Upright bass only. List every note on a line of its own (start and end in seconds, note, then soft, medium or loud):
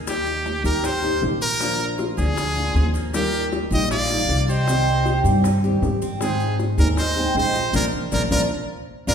0.00 0.58 D#2 medium
0.64 1.18 D#2 medium
1.22 2.12 A#1 medium
2.18 2.71 D2 medium
2.74 3.65 D#2 medium
3.71 4.25 A#1 loud
4.28 5.19 C2 medium
5.24 5.78 G2 medium
5.82 6.72 G#2 medium
6.78 7.31 D#2 loud
7.35 7.71 A#1 medium
7.73 7.88 A#1 loud
8.12 8.26 A#1 loud
8.31 8.45 A#1 medium
9.07 9.14 A#1 loud